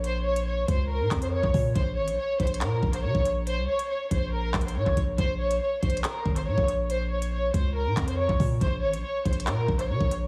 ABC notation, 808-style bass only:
X:1
M:4/4
L:1/16
Q:1/4=140
K:Bbm
V:1 name="808-style bass" clef=bass
B,,,6 D,,3 B,, F,,3 B,,, B,,2 | B,,,2 A,,, B,,, z2 B,,,2 B,,2 B,,,2 D, B,,,3- | B,,, C,, z4 B,,,4 B,,,2 B,, B,,, B,,,2 | B,,,4 z2 B,,,2 z2 A,,,2 B,, B,,,3- |
B,,,6 D,,3 B,, F,,3 B,,, B,,2 | B,,,2 A,,, B,,, z2 B,,,2 B,,2 B,,,2 D, B,,,3 |]